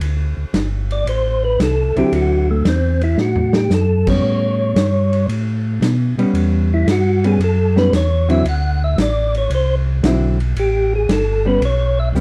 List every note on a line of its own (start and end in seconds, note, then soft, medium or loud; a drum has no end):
0.00 0.34 D2 medium
0.00 ride medium
0.37 0.45 D2 soft
0.53 1.05 G1 medium
0.53 snare medium
0.53 hi-hat pedal medium
0.53 ride medium
0.91 1.07 D5 medium
0.91 ride soft
1.06 1.58 A1 medium
1.06 1.43 C5 medium
1.06 ride medium
1.44 1.60 B4 loud
1.59 1.93 C2 medium
1.59 1.96 A4 medium
1.59 snare medium
1.59 hi-hat pedal medium
1.59 ride medium
1.96 2.04 C2 soft
1.96 2.62 D3 medium
1.96 2.62 F#3 medium
1.96 2.62 C4 medium
1.96 2.63 E4 medium
1.96 2.13 G4 medium
1.96 ride soft
2.12 2.63 D2 medium
2.12 2.49 F#4 medium
2.12 ride medium
2.51 2.66 A3 medium
2.65 3.16 E2 medium
2.65 3.02 C4 medium
2.65 snare medium
2.65 hi-hat pedal medium
2.65 ride medium
3.01 3.18 E4 medium
3.01 ride soft
3.18 3.69 A2 medium
3.18 3.55 F#4 medium
3.18 snare medium
3.36 floor tom medium
3.53 3.71 G4 medium
3.53 snare medium
3.70 4.21 F#2 medium
3.70 4.08 A4 medium
3.70 snare medium
3.70 hi-hat pedal medium
4.07 4.73 G3 medium
4.07 4.73 B3 medium
4.07 4.74 C#4 medium
4.07 5.26 C#5 loud
4.07 kick medium
4.07 crash medium
4.23 4.74 A2 medium
4.76 5.27 G2 medium
4.76 snare medium
4.76 hi-hat pedal medium
4.76 ride medium
5.13 ride soft
5.28 5.80 A2 medium
5.28 ride medium
5.81 6.15 B2 medium
5.81 snare medium
5.81 hi-hat pedal medium
5.81 ride medium
6.17 6.26 B2 soft
6.17 6.84 G3 medium
6.17 6.84 B3 medium
6.17 6.85 C#4 medium
6.17 ride soft
6.33 6.85 E2 medium
6.33 ride medium
6.74 6.88 E4 medium
6.86 7.38 G2 medium
6.86 snare medium
6.86 hi-hat pedal medium
6.86 ride medium
6.91 7.25 F#4 loud
7.24 7.39 G3 medium
7.24 7.39 B3 medium
7.24 7.39 C#4 medium
7.24 7.41 G#4 medium
7.24 ride medium
7.39 7.91 F#2 medium
7.39 ride medium
7.44 7.77 A4 medium
7.76 7.91 G3 medium
7.76 7.91 B3 medium
7.76 7.92 C#4 medium
7.76 7.93 B4 loud
7.76 snare medium
7.92 8.43 E2 medium
7.92 snare medium
7.92 hi-hat pedal medium
7.92 ride medium
7.96 8.30 C#5 medium
8.29 8.44 D3 medium
8.29 8.44 F#3 medium
8.29 8.44 C4 medium
8.29 8.44 E4 medium
8.29 8.46 E5 medium
8.29 ride soft
8.45 8.96 D2 medium
8.45 ride medium
8.49 8.82 F#5 loud
8.84 8.99 E5 loud
8.97 9.49 A1 medium
8.97 snare medium
8.97 hi-hat pedal medium
8.97 ride medium
9.02 9.35 D5 medium
9.35 9.52 C#5 loud
9.35 ride soft
9.50 10.02 C2 medium
9.50 ride medium
9.55 9.75 C5 loud
10.03 10.55 B1 medium
10.03 10.37 D3 medium
10.03 10.37 F#3 medium
10.03 10.37 C4 medium
10.03 10.37 E4 medium
10.03 snare medium
10.03 hi-hat pedal medium
10.03 ride medium
10.40 ride soft
10.55 11.07 A1 medium
10.55 ride medium
10.59 10.93 G4 medium
10.95 11.10 G#4 loud
11.08 11.60 G1 medium
11.08 snare medium
11.08 hi-hat pedal medium
11.08 ride medium
11.13 11.46 A4 medium
11.45 11.60 G3 medium
11.45 11.61 B3 medium
11.45 11.61 C#4 medium
11.45 11.62 B4 loud
11.61 12.13 B1 medium
11.61 ride medium
11.65 11.99 C#5 loud
12.00 12.09 E5 loud
12.13 12.21 C#2 medium
12.13 12.21 G3 medium
12.13 12.21 B3 medium
12.13 12.21 C#4 medium
12.13 hi-hat pedal medium